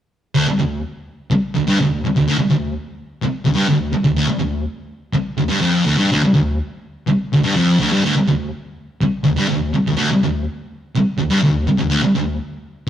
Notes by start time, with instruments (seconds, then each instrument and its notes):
0.35 distorted electric guitar D2
0.49 muted distorted electric guitar stroke
0.59 distorted electric guitar D2
1.31 muted distorted electric guitar stroke
1.55 distorted electric guitar D2
1.68 distorted electric guitar G2
1.80 distorted electric guitar D2
2.05 muted distorted electric guitar stroke
2.16 distorted electric guitar D2
2.28 distorted electric guitar D2
2.38 muted distorted electric guitar stroke
2.50 distorted electric guitar D2
3.22 muted distorted electric guitar stroke
3.45 distorted electric guitar D2
3.55 distorted electric guitar G2
3.69 distorted electric guitar D2
3.93 muted distorted electric guitar stroke
4.04 distorted electric guitar D2
4.17 distorted electric guitar D2
4.28 muted distorted electric guitar stroke
4.39 distorted electric guitar D2
5.13 muted distorted electric guitar stroke
5.38 distorted electric guitar D2
5.49 distorted electric guitar G2
5.61 distorted electric guitar F2
5.86 distorted electric guitar D2
5.97 distorted electric guitar G2
6.12 distorted electric guitar D2
6.23 muted distorted electric guitar stroke
6.34 distorted electric guitar D2
7.07 muted distorted electric guitar stroke
7.33 distorted electric guitar D2
7.44 distorted electric guitar G2
7.56 distorted electric guitar F2
7.80 distorted electric guitar D2
7.93 distorted electric guitar G2
8.05 distorted electric guitar D2
8.17 muted distorted electric guitar stroke
8.28 distorted electric guitar D2
9.01 muted distorted electric guitar stroke
9.24 distorted electric guitar D2
9.38 distorted electric guitar G2
9.49 distorted electric guitar D2
9.74 muted distorted electric guitar stroke
9.88 distorted electric guitar D2
9.97 distorted electric guitar D2
10.12 muted distorted electric guitar stroke
10.23 distorted electric guitar D2
10.96 muted distorted electric guitar stroke
11.19 distorted electric guitar D2
11.30 distorted electric guitar G2
11.42 distorted electric guitar D2
11.67 muted distorted electric guitar stroke
11.78 distorted electric guitar D2
11.90 distorted electric guitar D2
12.03 muted distorted electric guitar stroke
12.15 distorted electric guitar D2